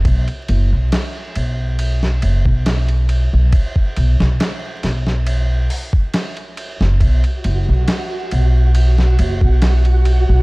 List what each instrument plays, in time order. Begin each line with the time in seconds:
0.05 upright bass B1, kick, ride
0.28 ride
0.48 upright bass F#1, ride
0.72 upright bass B1
0.92 snare, ride
1.36 upright bass B1, ride
1.79 ride
2.03 snare
2.22 upright bass F#1, ride
2.45 upright bass B1, kick
2.66 snare, ride
2.88 ride
3.09 ride
3.33 upright bass B1
3.53 kick, ride
3.76 kick
3.96 upright bass B1, ride
4.20 upright bass B1, snare
4.40 snare, ride
4.83 upright bass B1, snare, ride
5.07 snare
5.27 ride
5.70 open hi-hat
5.93 kick
6.14 snare, ride
6.37 ride
6.57 ride
6.81 upright bass F#1, snare
6.99 upright bass B1, synth texture F#4, kick, ride
7.24 ride
7.44 upright bass F#1, ride
7.69 upright bass B1
7.88 snare, ride
8.31 upright bass B1, ride
8.75 ride
8.99 snare
9.19 upright bass F#1, ride
9.41 upright bass B1, kick
9.62 snare, ride
9.85 ride
10.05 ride
10.29 upright bass B1